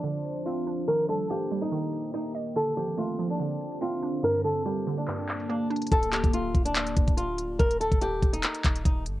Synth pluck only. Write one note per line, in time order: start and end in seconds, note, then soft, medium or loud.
0.00 0.88 D3 medium
0.00 0.88 F3 medium
0.00 0.67 A3 medium
0.46 0.88 C4 medium
0.67 0.88 D4 medium
0.88 1.70 D#3 medium
1.09 1.50 G3 medium
1.30 2.35 A#3 medium
1.51 2.56 G3 loud
1.72 2.56 D#3 medium
2.14 2.56 D#4 medium
2.35 2.56 D#5 medium
2.56 3.38 D3 medium
2.77 3.18 F3 medium
2.98 4.03 A3 medium
3.19 4.24 F3 medium
3.40 4.24 D3 medium
3.81 4.23 C4 medium
4.02 4.24 D4 medium
4.23 5.07 G2 medium
4.44 4.86 D3 medium
4.65 5.71 G3 medium
4.87 5.92 D3 medium
5.08 5.92 G2 medium
5.49 5.91 A#3 medium
5.70 5.91 D4 medium